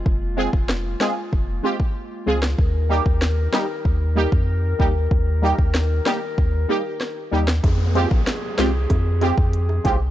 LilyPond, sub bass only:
\new Staff \with { instrumentName = "Sub bass" } { \clef bass \time 4/4 \key f \minor \tempo 4 = 95 f,,8. f,,8. r8 f,,8 r4 des,8 | ees,8. ees,8. r8 ees,8. f,8. ees,8 | ees,8. ees,8. r8 ees,8 r4 ees,8 | f,8. bes,,16 r8 c,8 f,8. f,8. c,8 | }